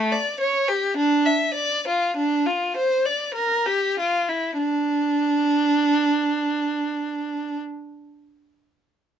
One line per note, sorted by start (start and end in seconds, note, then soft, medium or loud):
0.12 0.38 D5 medium
0.40 0.66 C#5 medium
0.68 0.96 G4 soft
0.97 1.25 D4 medium
1.26 1.55 E5 soft
1.54 1.84 D5 soft
1.88 2.16 F4 soft
2.16 2.46 D4 medium
2.46 2.76 F4 soft
2.77 3.06 C5 soft
3.05 3.37 D5 soft
3.34 3.67 A#4 medium
3.66 3.99 G4 soft
4.00 4.31 F4 soft
4.28 4.61 E4 soft
4.58 7.60 D4 medium